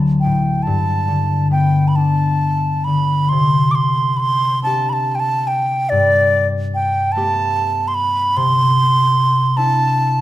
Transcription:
0.00 0.71 D2 medium
0.00 0.29 D3 soft
0.00 0.71 F#3 soft
0.20 0.64 G5 medium
0.24 0.71 A2 soft
0.63 1.50 A5 medium
0.67 3.35 G2 soft
1.08 2.86 D3 soft
1.51 3.38 B3 soft
1.51 1.89 G5 medium
1.88 1.97 B5 medium
1.96 4.64 D4 soft
1.96 2.86 A5 medium
2.84 3.35 D3 soft
2.84 3.30 B5 medium
3.29 5.95 C3 soft
3.29 3.73 C6 medium
3.71 4.18 C6 medium
3.71 3.77 D6 medium
4.17 4.20 B5 medium
4.17 4.62 C6 medium
4.62 7.22 C4 soft
4.62 7.44 D4 soft
4.62 4.91 A5 medium
4.66 7.02 G4 soft
4.89 5.17 A5 medium
4.89 4.94 B5 medium
5.15 5.21 G5 medium
5.20 5.49 A5 medium
5.47 5.91 G5 medium
5.89 8.40 G2 medium
5.89 6.47 D5 medium
6.75 7.14 G5 medium
7.12 8.43 B3 soft
7.12 7.89 A5 medium
7.16 10.21 A3 soft
7.16 9.53 G4 soft
7.88 7.96 C6 medium
7.94 8.38 B5 medium
8.37 10.21 C3 medium
8.37 9.58 C6 loud
9.56 10.21 C4 soft
9.56 10.21 D4 soft
9.56 10.21 E4 soft
9.56 10.21 A5 medium

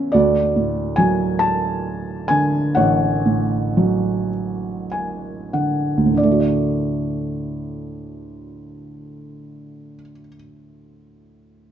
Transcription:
0.00 0.10 E2 medium
0.00 0.16 E3 soft
0.00 0.13 C#4 medium
0.00 0.11 E4 soft
0.00 0.16 C#5 medium
0.00 0.16 E5 medium
0.12 2.73 D2 medium
0.12 1.37 F#4 medium
0.12 0.93 D5 medium
0.56 2.26 A2 soft
0.96 2.72 F#3 medium
0.96 1.41 G#5 medium
1.39 2.32 A5 medium
2.28 4.29 D3 medium
2.28 2.77 G#5 loud
2.75 6.14 A1 medium
2.75 4.88 C#5 medium
2.75 4.87 F#5 medium
3.26 5.50 A2 soft
3.77 6.14 F#3 medium
4.92 5.49 G#5 medium
5.53 6.13 D3 soft
5.53 6.14 F#5 medium
5.97 9.93 D2 soft
6.06 10.01 A2 soft
6.14 10.10 D3 soft
6.14 6.39 D5 medium
6.23 10.19 A3 soft
6.31 10.27 F#4 soft
6.40 10.36 D5 soft

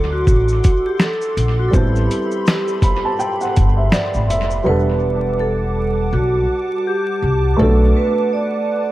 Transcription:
0.00 0.23 D2 loud
0.00 1.67 F#3 medium
0.00 1.68 C4 medium
0.00 1.69 D4 medium
0.00 1.70 E4 medium
0.00 1.70 A4 medium
0.00 4.62 A4 medium
0.00 1.70 F#5 medium
0.00 4.62 C6 medium
0.00 1.69 D6 medium
0.13 0.88 F#4 medium
0.27 0.59 A1 medium
0.27 kick medium
0.27 shaker medium
0.48 shaker soft
0.64 kick medium
0.64 closed hi-hat medium
0.64 shaker soft
0.86 0.93 G4 medium
0.99 1.55 A4 loud
0.99 finger snap medium
0.99 snare loud
0.99 shaker medium
1.21 shaker soft
1.37 1.69 A#1 medium
1.37 closed hi-hat medium
1.37 shaker soft
1.59 1.68 F#4 medium
1.68 4.61 G3 medium
1.68 1.74 A4 medium
1.72 2.06 A1 loud
1.72 4.62 B3 medium
1.72 4.62 C4 medium
1.72 4.63 E4 medium
1.72 4.63 G4 medium
1.72 3.90 G4 medium
1.72 4.63 B5 medium
1.72 kick loud
1.72 shaker medium
1.77 4.64 A4 medium
1.96 shaker soft
2.11 closed hi-hat medium
2.11 shaker medium
2.32 shaker soft
2.47 finger snap medium
2.47 snare loud
2.47 shaker medium
2.68 shaker soft
2.82 3.03 B5 medium
2.82 kick medium
2.82 closed hi-hat medium
2.82 shaker soft
3.05 3.19 A5 medium
3.19 3.39 G5 medium
3.19 shaker medium
3.41 3.75 F#5 medium
3.41 shaker medium
3.56 3.89 G1 medium
3.56 kick loud
3.56 closed hi-hat medium
3.56 shaker soft
3.77 3.91 E5 medium
3.92 4.27 D5 medium
3.92 finger snap medium
3.92 snare loud
3.92 shaker medium
4.14 4.30 A1 medium
4.14 shaker soft
4.30 4.62 F1 medium
4.30 4.64 E5 medium
4.30 closed hi-hat medium
4.30 shaker soft
4.51 shaker soft
4.64 6.08 E1 medium
4.64 7.53 G3 medium
4.64 7.56 G3 medium
4.64 7.54 B3 medium
4.64 7.55 D4 medium
4.64 5.42 B4 medium
4.64 7.56 F#5 medium
4.64 8.92 A5 medium
4.64 8.92 D6 medium
4.68 7.56 A4 medium
4.68 7.56 F#5 medium
5.40 6.15 A4 medium
6.13 6.45 B1 medium
6.13 6.88 F#4 medium
6.87 7.62 G4 medium
7.22 7.54 C2 medium
7.57 7.91 B1 loud
7.57 8.92 A3 medium
7.57 8.92 B3 medium
7.57 8.92 D4 medium
7.57 7.93 A4 medium
7.57 8.92 B4 medium
7.57 8.92 F#5 medium
7.61 8.92 F#4 medium
7.61 8.92 A4 medium
7.97 8.30 B4 medium
8.33 8.92 D5 medium

